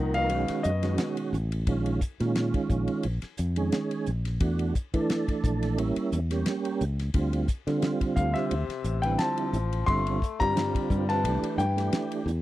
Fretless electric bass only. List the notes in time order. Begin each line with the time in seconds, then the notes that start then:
Already playing: C2
0.31 B1
0.49 muted fretless electric bass stroke
0.65 F#2
1.33 A1
1.67 A#1
2.21 A#2
2.70 A#1
3.05 A#1
3.23 muted fretless electric bass stroke
3.39 F2
4.08 A#1
4.41 E2
4.94 E3
5.44 A#1
5.77 A1
6.12 E2
6.81 C#2
7.14 D2
7.67 D3
8.17 D2
8.51 D2
8.69 muted fretless electric bass stroke
8.84 A1
9.53 A1
9.88 G1
10.41 G2
10.90 G2
11.24 C2
11.58 G2
12.26 E2